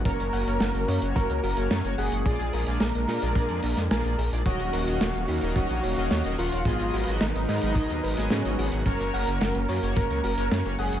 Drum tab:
HH |xxoxxxoxxxoxxxox|xxoxxxoxxxoxxxox|xxoxxxoxxxoxxxox|xxoxxxoxxxoxxxox|
SD |----o-------o---|----o-o----oo---|----o-------o---|----o-o----oo---|
BD |o-------o-------|o-------o-------|o-------o-------|o-------o-------|

HH |xxoxxxoxxxoxxxox|
SD |----o-------o---|
BD |o-------o-------|